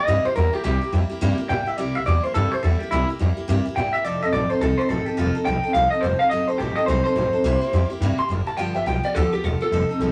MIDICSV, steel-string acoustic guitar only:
0, 0, Header, 1, 2, 480
1, 0, Start_track
1, 0, Tempo, 283286
1, 1103, Time_signature, 4, 2, 24, 8
1, 17146, End_track
2, 0, Start_track
2, 0, Title_t, "Steel-string acoustic guitar"
2, 0, Program_c, 0, 25
2, 123, Note_on_c, 0, 48, 77
2, 131, Note_on_c, 0, 55, 78
2, 136, Note_on_c, 0, 58, 84
2, 145, Note_on_c, 0, 64, 85
2, 155, Note_on_c, 0, 67, 84
2, 406, Note_off_c, 0, 67, 0
2, 427, Note_off_c, 0, 48, 0
2, 427, Note_on_c, 0, 67, 58
2, 431, Note_off_c, 0, 64, 0
2, 432, Note_off_c, 0, 55, 0
2, 434, Note_off_c, 0, 58, 0
2, 452, Note_on_c, 0, 64, 50
2, 476, Note_on_c, 0, 58, 47
2, 599, Note_off_c, 0, 58, 0
2, 603, Note_on_c, 0, 55, 66
2, 614, Note_off_c, 0, 64, 0
2, 617, Note_off_c, 0, 67, 0
2, 620, Note_on_c, 0, 58, 64
2, 635, Note_on_c, 0, 64, 72
2, 649, Note_on_c, 0, 67, 64
2, 873, Note_off_c, 0, 67, 0
2, 894, Note_on_c, 0, 67, 55
2, 903, Note_off_c, 0, 64, 0
2, 908, Note_off_c, 0, 55, 0
2, 916, Note_off_c, 0, 58, 0
2, 923, Note_on_c, 0, 64, 51
2, 941, Note_on_c, 0, 58, 43
2, 1078, Note_on_c, 0, 48, 78
2, 1079, Note_off_c, 0, 58, 0
2, 1085, Note_off_c, 0, 64, 0
2, 1085, Note_on_c, 0, 55, 88
2, 1091, Note_off_c, 0, 67, 0
2, 1099, Note_on_c, 0, 58, 85
2, 1105, Note_on_c, 0, 64, 91
2, 1113, Note_on_c, 0, 67, 85
2, 1360, Note_off_c, 0, 67, 0
2, 1381, Note_on_c, 0, 67, 53
2, 1386, Note_off_c, 0, 48, 0
2, 1388, Note_off_c, 0, 64, 0
2, 1389, Note_off_c, 0, 55, 0
2, 1396, Note_off_c, 0, 58, 0
2, 1409, Note_on_c, 0, 64, 52
2, 1427, Note_on_c, 0, 58, 43
2, 1560, Note_off_c, 0, 58, 0
2, 1565, Note_on_c, 0, 55, 65
2, 1575, Note_off_c, 0, 67, 0
2, 1576, Note_off_c, 0, 64, 0
2, 1580, Note_on_c, 0, 58, 58
2, 1597, Note_on_c, 0, 64, 64
2, 1611, Note_on_c, 0, 67, 74
2, 1836, Note_off_c, 0, 67, 0
2, 1856, Note_on_c, 0, 67, 61
2, 1867, Note_off_c, 0, 64, 0
2, 1870, Note_off_c, 0, 55, 0
2, 1877, Note_off_c, 0, 58, 0
2, 1887, Note_on_c, 0, 64, 58
2, 1903, Note_on_c, 0, 58, 51
2, 2047, Note_off_c, 0, 58, 0
2, 2050, Note_off_c, 0, 64, 0
2, 2051, Note_on_c, 0, 48, 99
2, 2053, Note_off_c, 0, 67, 0
2, 2057, Note_on_c, 0, 55, 99
2, 2068, Note_on_c, 0, 58, 102
2, 2070, Note_on_c, 0, 64, 104
2, 2077, Note_on_c, 0, 67, 96
2, 2313, Note_off_c, 0, 67, 0
2, 2334, Note_on_c, 0, 67, 68
2, 2340, Note_off_c, 0, 64, 0
2, 2353, Note_off_c, 0, 48, 0
2, 2356, Note_off_c, 0, 55, 0
2, 2360, Note_on_c, 0, 64, 58
2, 2361, Note_off_c, 0, 58, 0
2, 2385, Note_on_c, 0, 58, 53
2, 2522, Note_off_c, 0, 58, 0
2, 2527, Note_on_c, 0, 55, 56
2, 2532, Note_off_c, 0, 67, 0
2, 2533, Note_off_c, 0, 64, 0
2, 2542, Note_on_c, 0, 58, 68
2, 2554, Note_on_c, 0, 64, 70
2, 2570, Note_on_c, 0, 67, 65
2, 2797, Note_off_c, 0, 67, 0
2, 2818, Note_on_c, 0, 67, 60
2, 2827, Note_off_c, 0, 64, 0
2, 2831, Note_off_c, 0, 55, 0
2, 2838, Note_off_c, 0, 58, 0
2, 2847, Note_on_c, 0, 64, 52
2, 2864, Note_on_c, 0, 58, 44
2, 3003, Note_off_c, 0, 58, 0
2, 3009, Note_on_c, 0, 48, 85
2, 3013, Note_off_c, 0, 64, 0
2, 3014, Note_off_c, 0, 67, 0
2, 3014, Note_on_c, 0, 55, 80
2, 3023, Note_on_c, 0, 58, 88
2, 3034, Note_on_c, 0, 64, 90
2, 3037, Note_on_c, 0, 67, 85
2, 3284, Note_off_c, 0, 67, 0
2, 3304, Note_on_c, 0, 67, 59
2, 3312, Note_off_c, 0, 48, 0
2, 3314, Note_off_c, 0, 55, 0
2, 3315, Note_off_c, 0, 64, 0
2, 3319, Note_off_c, 0, 58, 0
2, 3335, Note_on_c, 0, 64, 51
2, 3350, Note_on_c, 0, 58, 45
2, 3483, Note_off_c, 0, 58, 0
2, 3486, Note_on_c, 0, 55, 56
2, 3494, Note_off_c, 0, 64, 0
2, 3497, Note_off_c, 0, 67, 0
2, 3503, Note_on_c, 0, 58, 64
2, 3515, Note_on_c, 0, 64, 74
2, 3530, Note_on_c, 0, 67, 66
2, 3768, Note_off_c, 0, 67, 0
2, 3789, Note_on_c, 0, 67, 62
2, 3790, Note_off_c, 0, 55, 0
2, 3799, Note_off_c, 0, 58, 0
2, 3799, Note_off_c, 0, 64, 0
2, 3819, Note_on_c, 0, 64, 48
2, 3836, Note_on_c, 0, 58, 46
2, 3967, Note_off_c, 0, 58, 0
2, 3970, Note_on_c, 0, 48, 79
2, 3974, Note_off_c, 0, 64, 0
2, 3979, Note_off_c, 0, 67, 0
2, 3980, Note_on_c, 0, 55, 85
2, 3987, Note_on_c, 0, 58, 88
2, 3995, Note_on_c, 0, 64, 96
2, 4003, Note_on_c, 0, 67, 96
2, 4245, Note_off_c, 0, 67, 0
2, 4265, Note_on_c, 0, 67, 51
2, 4272, Note_off_c, 0, 48, 0
2, 4277, Note_off_c, 0, 55, 0
2, 4279, Note_off_c, 0, 64, 0
2, 4281, Note_off_c, 0, 58, 0
2, 4299, Note_on_c, 0, 64, 53
2, 4319, Note_on_c, 0, 58, 51
2, 4451, Note_on_c, 0, 55, 62
2, 4454, Note_off_c, 0, 58, 0
2, 4457, Note_off_c, 0, 67, 0
2, 4466, Note_off_c, 0, 64, 0
2, 4475, Note_on_c, 0, 58, 66
2, 4487, Note_on_c, 0, 64, 70
2, 4502, Note_on_c, 0, 67, 71
2, 4727, Note_off_c, 0, 67, 0
2, 4748, Note_on_c, 0, 67, 57
2, 4752, Note_off_c, 0, 55, 0
2, 4757, Note_off_c, 0, 64, 0
2, 4764, Note_off_c, 0, 58, 0
2, 4778, Note_on_c, 0, 64, 48
2, 4799, Note_on_c, 0, 58, 51
2, 4933, Note_off_c, 0, 58, 0
2, 4937, Note_on_c, 0, 48, 78
2, 4939, Note_off_c, 0, 67, 0
2, 4942, Note_off_c, 0, 64, 0
2, 4952, Note_on_c, 0, 55, 76
2, 4953, Note_on_c, 0, 58, 93
2, 4962, Note_on_c, 0, 64, 92
2, 4974, Note_on_c, 0, 67, 86
2, 5208, Note_off_c, 0, 67, 0
2, 5229, Note_on_c, 0, 67, 57
2, 5234, Note_off_c, 0, 64, 0
2, 5235, Note_off_c, 0, 48, 0
2, 5242, Note_off_c, 0, 55, 0
2, 5243, Note_off_c, 0, 58, 0
2, 5254, Note_on_c, 0, 64, 54
2, 5279, Note_on_c, 0, 58, 47
2, 5407, Note_off_c, 0, 58, 0
2, 5411, Note_on_c, 0, 55, 72
2, 5419, Note_off_c, 0, 67, 0
2, 5425, Note_off_c, 0, 64, 0
2, 5428, Note_on_c, 0, 58, 77
2, 5445, Note_on_c, 0, 64, 71
2, 5457, Note_on_c, 0, 67, 79
2, 5687, Note_off_c, 0, 67, 0
2, 5703, Note_off_c, 0, 64, 0
2, 5707, Note_on_c, 0, 67, 66
2, 5712, Note_off_c, 0, 55, 0
2, 5720, Note_off_c, 0, 58, 0
2, 5723, Note_on_c, 0, 64, 60
2, 5750, Note_on_c, 0, 58, 54
2, 5892, Note_on_c, 0, 48, 96
2, 5893, Note_off_c, 0, 58, 0
2, 5898, Note_off_c, 0, 67, 0
2, 5905, Note_off_c, 0, 64, 0
2, 5910, Note_on_c, 0, 55, 96
2, 5914, Note_on_c, 0, 58, 91
2, 5924, Note_on_c, 0, 64, 100
2, 5932, Note_on_c, 0, 67, 102
2, 6172, Note_off_c, 0, 67, 0
2, 6192, Note_off_c, 0, 48, 0
2, 6192, Note_on_c, 0, 67, 64
2, 6196, Note_off_c, 0, 64, 0
2, 6201, Note_off_c, 0, 55, 0
2, 6203, Note_off_c, 0, 58, 0
2, 6216, Note_on_c, 0, 64, 52
2, 6245, Note_on_c, 0, 58, 50
2, 6377, Note_on_c, 0, 55, 64
2, 6380, Note_off_c, 0, 67, 0
2, 6381, Note_off_c, 0, 58, 0
2, 6392, Note_off_c, 0, 64, 0
2, 6402, Note_on_c, 0, 58, 70
2, 6411, Note_on_c, 0, 64, 62
2, 6426, Note_on_c, 0, 67, 64
2, 6651, Note_off_c, 0, 67, 0
2, 6671, Note_on_c, 0, 67, 56
2, 6674, Note_off_c, 0, 55, 0
2, 6684, Note_off_c, 0, 64, 0
2, 6686, Note_off_c, 0, 58, 0
2, 6704, Note_on_c, 0, 64, 54
2, 6724, Note_on_c, 0, 58, 47
2, 6855, Note_on_c, 0, 53, 80
2, 6859, Note_off_c, 0, 67, 0
2, 6860, Note_off_c, 0, 58, 0
2, 6867, Note_on_c, 0, 60, 84
2, 6875, Note_off_c, 0, 64, 0
2, 6882, Note_on_c, 0, 63, 97
2, 6892, Note_on_c, 0, 69, 90
2, 7138, Note_off_c, 0, 69, 0
2, 7152, Note_off_c, 0, 53, 0
2, 7158, Note_on_c, 0, 69, 55
2, 7159, Note_off_c, 0, 60, 0
2, 7160, Note_off_c, 0, 63, 0
2, 7180, Note_on_c, 0, 63, 55
2, 7204, Note_on_c, 0, 60, 51
2, 7330, Note_off_c, 0, 60, 0
2, 7332, Note_on_c, 0, 53, 59
2, 7342, Note_off_c, 0, 69, 0
2, 7346, Note_off_c, 0, 63, 0
2, 7351, Note_on_c, 0, 60, 60
2, 7366, Note_on_c, 0, 63, 63
2, 7384, Note_on_c, 0, 69, 73
2, 7604, Note_off_c, 0, 69, 0
2, 7624, Note_on_c, 0, 69, 59
2, 7628, Note_off_c, 0, 63, 0
2, 7631, Note_off_c, 0, 53, 0
2, 7640, Note_off_c, 0, 60, 0
2, 7649, Note_on_c, 0, 63, 49
2, 7671, Note_on_c, 0, 60, 45
2, 7815, Note_off_c, 0, 60, 0
2, 7815, Note_off_c, 0, 69, 0
2, 7816, Note_on_c, 0, 53, 77
2, 7827, Note_off_c, 0, 63, 0
2, 7835, Note_on_c, 0, 60, 83
2, 7844, Note_on_c, 0, 63, 85
2, 7856, Note_on_c, 0, 69, 85
2, 8086, Note_off_c, 0, 69, 0
2, 8106, Note_on_c, 0, 69, 51
2, 8112, Note_off_c, 0, 63, 0
2, 8113, Note_off_c, 0, 53, 0
2, 8122, Note_off_c, 0, 60, 0
2, 8133, Note_on_c, 0, 63, 46
2, 8155, Note_on_c, 0, 60, 45
2, 8285, Note_off_c, 0, 60, 0
2, 8286, Note_on_c, 0, 53, 63
2, 8295, Note_off_c, 0, 69, 0
2, 8299, Note_off_c, 0, 63, 0
2, 8305, Note_on_c, 0, 60, 63
2, 8319, Note_on_c, 0, 63, 69
2, 8338, Note_on_c, 0, 69, 69
2, 8556, Note_off_c, 0, 69, 0
2, 8576, Note_on_c, 0, 69, 59
2, 8580, Note_off_c, 0, 63, 0
2, 8587, Note_off_c, 0, 53, 0
2, 8597, Note_off_c, 0, 60, 0
2, 8600, Note_on_c, 0, 63, 53
2, 8628, Note_on_c, 0, 60, 46
2, 8746, Note_off_c, 0, 60, 0
2, 8760, Note_on_c, 0, 53, 72
2, 8762, Note_off_c, 0, 63, 0
2, 8766, Note_on_c, 0, 60, 90
2, 8770, Note_off_c, 0, 69, 0
2, 8783, Note_on_c, 0, 63, 82
2, 8797, Note_on_c, 0, 69, 95
2, 9043, Note_off_c, 0, 69, 0
2, 9063, Note_on_c, 0, 69, 61
2, 9064, Note_off_c, 0, 53, 0
2, 9067, Note_off_c, 0, 60, 0
2, 9075, Note_off_c, 0, 63, 0
2, 9092, Note_on_c, 0, 63, 54
2, 9114, Note_on_c, 0, 60, 46
2, 9242, Note_on_c, 0, 53, 60
2, 9247, Note_off_c, 0, 60, 0
2, 9253, Note_off_c, 0, 69, 0
2, 9259, Note_off_c, 0, 63, 0
2, 9267, Note_on_c, 0, 60, 65
2, 9279, Note_on_c, 0, 63, 69
2, 9290, Note_on_c, 0, 69, 68
2, 9525, Note_off_c, 0, 69, 0
2, 9545, Note_off_c, 0, 53, 0
2, 9546, Note_on_c, 0, 69, 56
2, 9548, Note_off_c, 0, 63, 0
2, 9557, Note_off_c, 0, 60, 0
2, 9569, Note_on_c, 0, 63, 48
2, 9595, Note_on_c, 0, 60, 47
2, 9723, Note_off_c, 0, 60, 0
2, 9732, Note_on_c, 0, 53, 83
2, 9734, Note_off_c, 0, 69, 0
2, 9736, Note_off_c, 0, 63, 0
2, 9744, Note_on_c, 0, 60, 84
2, 9756, Note_on_c, 0, 63, 89
2, 9770, Note_on_c, 0, 69, 93
2, 10010, Note_off_c, 0, 69, 0
2, 10029, Note_off_c, 0, 53, 0
2, 10030, Note_off_c, 0, 63, 0
2, 10030, Note_on_c, 0, 69, 57
2, 10035, Note_off_c, 0, 60, 0
2, 10051, Note_on_c, 0, 63, 54
2, 10076, Note_on_c, 0, 60, 45
2, 10211, Note_on_c, 0, 53, 56
2, 10212, Note_off_c, 0, 60, 0
2, 10216, Note_off_c, 0, 69, 0
2, 10226, Note_off_c, 0, 63, 0
2, 10233, Note_on_c, 0, 60, 67
2, 10252, Note_on_c, 0, 63, 62
2, 10267, Note_on_c, 0, 69, 71
2, 10493, Note_off_c, 0, 69, 0
2, 10508, Note_off_c, 0, 53, 0
2, 10513, Note_on_c, 0, 69, 52
2, 10516, Note_off_c, 0, 63, 0
2, 10519, Note_off_c, 0, 60, 0
2, 10536, Note_on_c, 0, 63, 54
2, 10559, Note_on_c, 0, 60, 45
2, 10685, Note_off_c, 0, 60, 0
2, 10694, Note_on_c, 0, 54, 85
2, 10697, Note_off_c, 0, 69, 0
2, 10701, Note_off_c, 0, 63, 0
2, 10705, Note_on_c, 0, 60, 84
2, 10721, Note_on_c, 0, 63, 83
2, 10727, Note_on_c, 0, 69, 87
2, 10965, Note_off_c, 0, 69, 0
2, 10985, Note_on_c, 0, 69, 57
2, 10990, Note_off_c, 0, 54, 0
2, 10990, Note_off_c, 0, 63, 0
2, 10995, Note_off_c, 0, 60, 0
2, 11010, Note_on_c, 0, 63, 53
2, 11036, Note_on_c, 0, 60, 46
2, 11169, Note_off_c, 0, 60, 0
2, 11170, Note_on_c, 0, 54, 58
2, 11173, Note_off_c, 0, 69, 0
2, 11186, Note_off_c, 0, 63, 0
2, 11189, Note_on_c, 0, 60, 60
2, 11209, Note_on_c, 0, 63, 61
2, 11224, Note_on_c, 0, 69, 73
2, 11439, Note_off_c, 0, 69, 0
2, 11460, Note_on_c, 0, 69, 56
2, 11468, Note_off_c, 0, 54, 0
2, 11469, Note_off_c, 0, 63, 0
2, 11477, Note_off_c, 0, 60, 0
2, 11490, Note_on_c, 0, 63, 55
2, 11506, Note_on_c, 0, 60, 42
2, 11651, Note_off_c, 0, 69, 0
2, 11656, Note_off_c, 0, 60, 0
2, 11660, Note_on_c, 0, 54, 81
2, 11665, Note_off_c, 0, 63, 0
2, 11676, Note_on_c, 0, 60, 84
2, 11685, Note_on_c, 0, 63, 85
2, 11696, Note_on_c, 0, 69, 89
2, 11932, Note_off_c, 0, 69, 0
2, 11952, Note_off_c, 0, 54, 0
2, 11952, Note_on_c, 0, 69, 59
2, 11955, Note_off_c, 0, 63, 0
2, 11961, Note_off_c, 0, 60, 0
2, 11975, Note_on_c, 0, 63, 57
2, 11996, Note_on_c, 0, 60, 49
2, 12124, Note_off_c, 0, 60, 0
2, 12125, Note_on_c, 0, 54, 63
2, 12135, Note_off_c, 0, 63, 0
2, 12136, Note_off_c, 0, 69, 0
2, 12144, Note_on_c, 0, 60, 65
2, 12156, Note_on_c, 0, 63, 63
2, 12169, Note_on_c, 0, 69, 66
2, 12400, Note_off_c, 0, 69, 0
2, 12420, Note_on_c, 0, 69, 54
2, 12425, Note_off_c, 0, 54, 0
2, 12428, Note_off_c, 0, 63, 0
2, 12435, Note_off_c, 0, 60, 0
2, 12448, Note_on_c, 0, 63, 49
2, 12468, Note_on_c, 0, 60, 44
2, 12609, Note_on_c, 0, 48, 97
2, 12611, Note_off_c, 0, 69, 0
2, 12616, Note_on_c, 0, 55, 87
2, 12625, Note_off_c, 0, 60, 0
2, 12625, Note_off_c, 0, 63, 0
2, 12632, Note_on_c, 0, 58, 86
2, 12638, Note_on_c, 0, 64, 103
2, 12645, Note_on_c, 0, 67, 100
2, 12881, Note_off_c, 0, 67, 0
2, 12901, Note_on_c, 0, 67, 67
2, 12906, Note_off_c, 0, 64, 0
2, 12907, Note_off_c, 0, 48, 0
2, 12911, Note_off_c, 0, 55, 0
2, 12919, Note_off_c, 0, 58, 0
2, 12926, Note_on_c, 0, 64, 59
2, 12951, Note_on_c, 0, 58, 54
2, 13091, Note_off_c, 0, 67, 0
2, 13093, Note_off_c, 0, 58, 0
2, 13098, Note_on_c, 0, 55, 72
2, 13104, Note_off_c, 0, 64, 0
2, 13114, Note_on_c, 0, 58, 73
2, 13133, Note_on_c, 0, 64, 71
2, 13147, Note_on_c, 0, 67, 78
2, 13364, Note_off_c, 0, 67, 0
2, 13384, Note_on_c, 0, 67, 64
2, 13389, Note_off_c, 0, 64, 0
2, 13392, Note_off_c, 0, 55, 0
2, 13399, Note_off_c, 0, 58, 0
2, 13410, Note_on_c, 0, 64, 55
2, 13433, Note_on_c, 0, 58, 47
2, 13573, Note_off_c, 0, 67, 0
2, 13583, Note_on_c, 0, 48, 92
2, 13584, Note_off_c, 0, 58, 0
2, 13586, Note_off_c, 0, 64, 0
2, 13589, Note_on_c, 0, 55, 92
2, 13605, Note_on_c, 0, 58, 96
2, 13605, Note_on_c, 0, 64, 102
2, 13612, Note_on_c, 0, 67, 97
2, 13844, Note_off_c, 0, 67, 0
2, 13864, Note_on_c, 0, 67, 61
2, 13875, Note_off_c, 0, 48, 0
2, 13878, Note_off_c, 0, 55, 0
2, 13878, Note_off_c, 0, 64, 0
2, 13885, Note_off_c, 0, 58, 0
2, 13899, Note_on_c, 0, 64, 54
2, 13917, Note_on_c, 0, 58, 43
2, 14044, Note_on_c, 0, 55, 57
2, 14047, Note_off_c, 0, 58, 0
2, 14053, Note_off_c, 0, 67, 0
2, 14064, Note_off_c, 0, 64, 0
2, 14067, Note_on_c, 0, 58, 67
2, 14084, Note_on_c, 0, 64, 69
2, 14098, Note_on_c, 0, 67, 70
2, 14322, Note_off_c, 0, 67, 0
2, 14343, Note_on_c, 0, 67, 54
2, 14345, Note_off_c, 0, 55, 0
2, 14352, Note_off_c, 0, 64, 0
2, 14357, Note_off_c, 0, 58, 0
2, 14372, Note_on_c, 0, 64, 54
2, 14396, Note_on_c, 0, 58, 47
2, 14526, Note_on_c, 0, 43, 86
2, 14532, Note_off_c, 0, 67, 0
2, 14542, Note_on_c, 0, 50, 73
2, 14543, Note_off_c, 0, 58, 0
2, 14545, Note_on_c, 0, 53, 81
2, 14547, Note_off_c, 0, 64, 0
2, 14550, Note_on_c, 0, 59, 75
2, 14557, Note_on_c, 0, 65, 88
2, 14560, Note_on_c, 0, 67, 88
2, 14799, Note_off_c, 0, 67, 0
2, 14818, Note_off_c, 0, 65, 0
2, 14819, Note_on_c, 0, 67, 55
2, 14827, Note_off_c, 0, 43, 0
2, 14829, Note_off_c, 0, 59, 0
2, 14835, Note_off_c, 0, 50, 0
2, 14836, Note_off_c, 0, 53, 0
2, 14838, Note_on_c, 0, 65, 54
2, 14850, Note_on_c, 0, 59, 50
2, 14865, Note_on_c, 0, 53, 49
2, 14995, Note_off_c, 0, 53, 0
2, 15011, Note_off_c, 0, 67, 0
2, 15015, Note_off_c, 0, 59, 0
2, 15016, Note_on_c, 0, 53, 65
2, 15021, Note_off_c, 0, 65, 0
2, 15035, Note_on_c, 0, 59, 63
2, 15045, Note_on_c, 0, 65, 69
2, 15066, Note_on_c, 0, 67, 70
2, 15288, Note_off_c, 0, 67, 0
2, 15304, Note_off_c, 0, 65, 0
2, 15308, Note_on_c, 0, 67, 60
2, 15312, Note_off_c, 0, 53, 0
2, 15322, Note_off_c, 0, 59, 0
2, 15324, Note_on_c, 0, 65, 53
2, 15340, Note_on_c, 0, 59, 48
2, 15352, Note_on_c, 0, 53, 51
2, 15496, Note_off_c, 0, 67, 0
2, 15500, Note_off_c, 0, 53, 0
2, 15501, Note_on_c, 0, 43, 75
2, 15504, Note_off_c, 0, 65, 0
2, 15505, Note_off_c, 0, 59, 0
2, 15513, Note_on_c, 0, 50, 75
2, 15520, Note_on_c, 0, 53, 87
2, 15526, Note_on_c, 0, 59, 82
2, 15529, Note_on_c, 0, 65, 91
2, 15543, Note_on_c, 0, 67, 96
2, 15778, Note_off_c, 0, 67, 0
2, 15795, Note_off_c, 0, 43, 0
2, 15797, Note_off_c, 0, 65, 0
2, 15798, Note_on_c, 0, 67, 55
2, 15801, Note_off_c, 0, 50, 0
2, 15805, Note_off_c, 0, 53, 0
2, 15807, Note_off_c, 0, 59, 0
2, 15817, Note_on_c, 0, 65, 53
2, 15831, Note_on_c, 0, 59, 52
2, 15845, Note_on_c, 0, 53, 49
2, 15969, Note_off_c, 0, 53, 0
2, 15982, Note_off_c, 0, 67, 0
2, 15984, Note_off_c, 0, 59, 0
2, 15990, Note_on_c, 0, 53, 56
2, 15991, Note_off_c, 0, 65, 0
2, 16005, Note_on_c, 0, 59, 58
2, 16021, Note_on_c, 0, 65, 60
2, 16034, Note_on_c, 0, 67, 62
2, 16255, Note_off_c, 0, 67, 0
2, 16275, Note_on_c, 0, 67, 57
2, 16278, Note_off_c, 0, 65, 0
2, 16280, Note_off_c, 0, 53, 0
2, 16288, Note_off_c, 0, 59, 0
2, 16298, Note_on_c, 0, 65, 56
2, 16313, Note_on_c, 0, 59, 48
2, 16332, Note_on_c, 0, 53, 50
2, 16455, Note_off_c, 0, 53, 0
2, 16461, Note_off_c, 0, 67, 0
2, 16472, Note_off_c, 0, 65, 0
2, 16475, Note_on_c, 0, 53, 84
2, 16480, Note_off_c, 0, 59, 0
2, 16488, Note_on_c, 0, 60, 80
2, 16492, Note_on_c, 0, 63, 82
2, 16500, Note_on_c, 0, 69, 90
2, 16739, Note_off_c, 0, 69, 0
2, 16759, Note_on_c, 0, 69, 58
2, 16764, Note_off_c, 0, 53, 0
2, 16770, Note_off_c, 0, 60, 0
2, 16772, Note_off_c, 0, 63, 0
2, 16789, Note_on_c, 0, 63, 53
2, 16811, Note_on_c, 0, 60, 47
2, 16944, Note_off_c, 0, 69, 0
2, 16950, Note_off_c, 0, 60, 0
2, 16955, Note_on_c, 0, 53, 73
2, 16959, Note_off_c, 0, 63, 0
2, 16971, Note_on_c, 0, 60, 77
2, 16983, Note_on_c, 0, 63, 73
2, 16999, Note_on_c, 0, 69, 80
2, 17146, Note_off_c, 0, 53, 0
2, 17146, Note_off_c, 0, 60, 0
2, 17146, Note_off_c, 0, 63, 0
2, 17146, Note_off_c, 0, 69, 0
2, 17146, End_track
0, 0, End_of_file